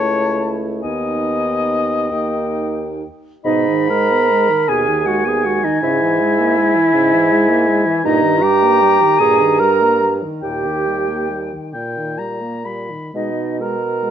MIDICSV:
0, 0, Header, 1, 6, 480
1, 0, Start_track
1, 0, Key_signature, 5, "minor"
1, 0, Tempo, 837989
1, 479, Time_signature, 6, 3, 24, 8
1, 1448, Tempo, 914634
1, 1928, Tempo, 851064
1, 2408, Tempo, 756620
1, 3848, Tempo, 731707
1, 4808, Tempo, 777202
1, 5768, Tempo, 828729
1, 6248, Tempo, 882353
1, 7208, Tempo, 956938
1, 7688, Tempo, 888889
1, 8214, End_track
2, 0, Start_track
2, 0, Title_t, "Oboe"
2, 0, Program_c, 0, 68
2, 0, Note_on_c, 0, 73, 99
2, 308, Note_off_c, 0, 73, 0
2, 476, Note_on_c, 0, 75, 90
2, 1661, Note_off_c, 0, 75, 0
2, 1935, Note_on_c, 0, 83, 99
2, 2657, Note_on_c, 0, 80, 91
2, 2667, Note_off_c, 0, 83, 0
2, 4812, Note_off_c, 0, 80, 0
2, 4827, Note_on_c, 0, 82, 112
2, 6059, Note_off_c, 0, 82, 0
2, 6257, Note_on_c, 0, 79, 64
2, 6901, Note_off_c, 0, 79, 0
2, 6970, Note_on_c, 0, 79, 60
2, 7212, Note_on_c, 0, 82, 57
2, 7220, Note_off_c, 0, 79, 0
2, 7448, Note_on_c, 0, 83, 56
2, 7456, Note_off_c, 0, 82, 0
2, 7691, Note_off_c, 0, 83, 0
2, 8214, End_track
3, 0, Start_track
3, 0, Title_t, "Flute"
3, 0, Program_c, 1, 73
3, 0, Note_on_c, 1, 81, 66
3, 322, Note_off_c, 1, 81, 0
3, 468, Note_on_c, 1, 80, 60
3, 1202, Note_on_c, 1, 79, 58
3, 1211, Note_off_c, 1, 80, 0
3, 1726, Note_off_c, 1, 79, 0
3, 1926, Note_on_c, 1, 75, 86
3, 2176, Note_on_c, 1, 82, 100
3, 2184, Note_off_c, 1, 75, 0
3, 2653, Note_on_c, 1, 80, 83
3, 2663, Note_off_c, 1, 82, 0
3, 2893, Note_on_c, 1, 78, 87
3, 2903, Note_off_c, 1, 80, 0
3, 3014, Note_on_c, 1, 80, 85
3, 3023, Note_off_c, 1, 78, 0
3, 3133, Note_on_c, 1, 78, 81
3, 3142, Note_off_c, 1, 80, 0
3, 3261, Note_on_c, 1, 75, 74
3, 3270, Note_off_c, 1, 78, 0
3, 3371, Note_off_c, 1, 75, 0
3, 3375, Note_on_c, 1, 76, 97
3, 4783, Note_off_c, 1, 76, 0
3, 4816, Note_on_c, 1, 75, 96
3, 5051, Note_on_c, 1, 79, 105
3, 5060, Note_off_c, 1, 75, 0
3, 5524, Note_on_c, 1, 80, 90
3, 5533, Note_off_c, 1, 79, 0
3, 5772, Note_on_c, 1, 82, 90
3, 5780, Note_off_c, 1, 80, 0
3, 6079, Note_off_c, 1, 82, 0
3, 6251, Note_on_c, 1, 79, 70
3, 6946, Note_off_c, 1, 79, 0
3, 7698, Note_on_c, 1, 75, 56
3, 7926, Note_off_c, 1, 75, 0
3, 7946, Note_on_c, 1, 82, 66
3, 8214, Note_off_c, 1, 82, 0
3, 8214, End_track
4, 0, Start_track
4, 0, Title_t, "Clarinet"
4, 0, Program_c, 2, 71
4, 0, Note_on_c, 2, 64, 72
4, 469, Note_off_c, 2, 64, 0
4, 483, Note_on_c, 2, 63, 63
4, 1196, Note_off_c, 2, 63, 0
4, 1214, Note_on_c, 2, 63, 66
4, 1721, Note_off_c, 2, 63, 0
4, 1932, Note_on_c, 2, 63, 93
4, 2185, Note_on_c, 2, 70, 107
4, 2193, Note_off_c, 2, 63, 0
4, 2656, Note_on_c, 2, 68, 96
4, 2666, Note_off_c, 2, 70, 0
4, 2903, Note_on_c, 2, 66, 97
4, 2913, Note_off_c, 2, 68, 0
4, 3030, Note_on_c, 2, 68, 91
4, 3040, Note_off_c, 2, 66, 0
4, 3146, Note_on_c, 2, 66, 100
4, 3155, Note_off_c, 2, 68, 0
4, 3267, Note_on_c, 2, 63, 91
4, 3276, Note_off_c, 2, 66, 0
4, 3378, Note_off_c, 2, 63, 0
4, 3382, Note_on_c, 2, 64, 112
4, 4787, Note_off_c, 2, 64, 0
4, 4816, Note_on_c, 2, 63, 102
4, 5053, Note_on_c, 2, 67, 121
4, 5062, Note_off_c, 2, 63, 0
4, 5526, Note_off_c, 2, 67, 0
4, 5532, Note_on_c, 2, 68, 113
4, 5776, Note_on_c, 2, 70, 106
4, 5784, Note_off_c, 2, 68, 0
4, 6081, Note_off_c, 2, 70, 0
4, 6259, Note_on_c, 2, 67, 81
4, 6950, Note_off_c, 2, 67, 0
4, 7698, Note_on_c, 2, 63, 68
4, 7947, Note_on_c, 2, 70, 85
4, 7955, Note_off_c, 2, 63, 0
4, 8214, Note_off_c, 2, 70, 0
4, 8214, End_track
5, 0, Start_track
5, 0, Title_t, "French horn"
5, 0, Program_c, 3, 60
5, 0, Note_on_c, 3, 57, 66
5, 480, Note_on_c, 3, 59, 62
5, 489, Note_off_c, 3, 57, 0
5, 1213, Note_on_c, 3, 58, 61
5, 1222, Note_off_c, 3, 59, 0
5, 1731, Note_off_c, 3, 58, 0
5, 1932, Note_on_c, 3, 47, 78
5, 2065, Note_on_c, 3, 51, 67
5, 2073, Note_off_c, 3, 47, 0
5, 2184, Note_on_c, 3, 56, 64
5, 2192, Note_off_c, 3, 51, 0
5, 2304, Note_on_c, 3, 59, 65
5, 2312, Note_off_c, 3, 56, 0
5, 2413, Note_on_c, 3, 56, 71
5, 2422, Note_off_c, 3, 59, 0
5, 2538, Note_on_c, 3, 51, 64
5, 2548, Note_off_c, 3, 56, 0
5, 2665, Note_on_c, 3, 47, 75
5, 2675, Note_off_c, 3, 51, 0
5, 2784, Note_on_c, 3, 51, 68
5, 2793, Note_off_c, 3, 47, 0
5, 2899, Note_on_c, 3, 56, 71
5, 2908, Note_off_c, 3, 51, 0
5, 3017, Note_on_c, 3, 59, 67
5, 3027, Note_off_c, 3, 56, 0
5, 3141, Note_on_c, 3, 56, 63
5, 3150, Note_off_c, 3, 59, 0
5, 3264, Note_on_c, 3, 51, 70
5, 3273, Note_off_c, 3, 56, 0
5, 3377, Note_off_c, 3, 51, 0
5, 3381, Note_on_c, 3, 49, 78
5, 3507, Note_on_c, 3, 52, 70
5, 3516, Note_off_c, 3, 49, 0
5, 3621, Note_on_c, 3, 56, 73
5, 3630, Note_off_c, 3, 52, 0
5, 3739, Note_on_c, 3, 58, 70
5, 3748, Note_off_c, 3, 56, 0
5, 3855, Note_on_c, 3, 56, 72
5, 3865, Note_off_c, 3, 58, 0
5, 3981, Note_on_c, 3, 52, 69
5, 3991, Note_off_c, 3, 56, 0
5, 4098, Note_on_c, 3, 49, 77
5, 4107, Note_off_c, 3, 52, 0
5, 4224, Note_on_c, 3, 52, 75
5, 4234, Note_off_c, 3, 49, 0
5, 4345, Note_on_c, 3, 56, 79
5, 4355, Note_off_c, 3, 52, 0
5, 4454, Note_on_c, 3, 58, 77
5, 4464, Note_off_c, 3, 56, 0
5, 4578, Note_on_c, 3, 56, 74
5, 4588, Note_off_c, 3, 58, 0
5, 4699, Note_on_c, 3, 52, 82
5, 4709, Note_off_c, 3, 56, 0
5, 4816, Note_off_c, 3, 52, 0
5, 4823, Note_on_c, 3, 46, 84
5, 4938, Note_on_c, 3, 51, 76
5, 4947, Note_off_c, 3, 46, 0
5, 5053, Note_on_c, 3, 55, 69
5, 5062, Note_off_c, 3, 51, 0
5, 5178, Note_on_c, 3, 58, 69
5, 5188, Note_off_c, 3, 55, 0
5, 5298, Note_on_c, 3, 55, 70
5, 5307, Note_off_c, 3, 58, 0
5, 5419, Note_on_c, 3, 51, 67
5, 5429, Note_off_c, 3, 55, 0
5, 5532, Note_on_c, 3, 46, 78
5, 5541, Note_off_c, 3, 51, 0
5, 5662, Note_on_c, 3, 51, 68
5, 5672, Note_off_c, 3, 46, 0
5, 5785, Note_on_c, 3, 55, 68
5, 5794, Note_off_c, 3, 51, 0
5, 5906, Note_on_c, 3, 58, 61
5, 5915, Note_off_c, 3, 55, 0
5, 6021, Note_on_c, 3, 55, 58
5, 6030, Note_off_c, 3, 58, 0
5, 6142, Note_on_c, 3, 51, 62
5, 6150, Note_off_c, 3, 55, 0
5, 6256, Note_off_c, 3, 51, 0
5, 6266, Note_on_c, 3, 46, 59
5, 6384, Note_on_c, 3, 51, 51
5, 6392, Note_off_c, 3, 46, 0
5, 6499, Note_on_c, 3, 55, 50
5, 6507, Note_off_c, 3, 51, 0
5, 6619, Note_on_c, 3, 58, 48
5, 6627, Note_off_c, 3, 55, 0
5, 6738, Note_on_c, 3, 55, 47
5, 6746, Note_off_c, 3, 58, 0
5, 6861, Note_on_c, 3, 51, 45
5, 6869, Note_off_c, 3, 55, 0
5, 6977, Note_on_c, 3, 46, 51
5, 6985, Note_off_c, 3, 51, 0
5, 7098, Note_on_c, 3, 51, 49
5, 7106, Note_off_c, 3, 46, 0
5, 7215, Note_on_c, 3, 55, 49
5, 7222, Note_off_c, 3, 51, 0
5, 7327, Note_on_c, 3, 58, 46
5, 7334, Note_off_c, 3, 55, 0
5, 7448, Note_on_c, 3, 55, 44
5, 7455, Note_off_c, 3, 58, 0
5, 7569, Note_on_c, 3, 51, 46
5, 7577, Note_off_c, 3, 55, 0
5, 7686, Note_off_c, 3, 51, 0
5, 7690, Note_on_c, 3, 56, 51
5, 7776, Note_off_c, 3, 56, 0
5, 7939, Note_on_c, 3, 56, 42
5, 8026, Note_off_c, 3, 56, 0
5, 8171, Note_on_c, 3, 56, 43
5, 8214, Note_off_c, 3, 56, 0
5, 8214, End_track
6, 0, Start_track
6, 0, Title_t, "Bassoon"
6, 0, Program_c, 4, 70
6, 0, Note_on_c, 4, 37, 67
6, 480, Note_off_c, 4, 37, 0
6, 484, Note_on_c, 4, 39, 58
6, 1197, Note_off_c, 4, 39, 0
6, 1212, Note_on_c, 4, 39, 55
6, 1721, Note_off_c, 4, 39, 0
6, 1934, Note_on_c, 4, 44, 91
6, 2533, Note_off_c, 4, 44, 0
6, 2660, Note_on_c, 4, 39, 78
6, 3259, Note_off_c, 4, 39, 0
6, 3382, Note_on_c, 4, 44, 93
6, 3973, Note_off_c, 4, 44, 0
6, 4098, Note_on_c, 4, 44, 91
6, 4691, Note_off_c, 4, 44, 0
6, 4818, Note_on_c, 4, 43, 94
6, 5405, Note_off_c, 4, 43, 0
6, 5534, Note_on_c, 4, 43, 83
6, 6132, Note_off_c, 4, 43, 0
6, 6257, Note_on_c, 4, 39, 67
6, 6852, Note_off_c, 4, 39, 0
6, 6976, Note_on_c, 4, 46, 53
6, 7572, Note_off_c, 4, 46, 0
6, 7698, Note_on_c, 4, 47, 59
6, 8214, Note_off_c, 4, 47, 0
6, 8214, End_track
0, 0, End_of_file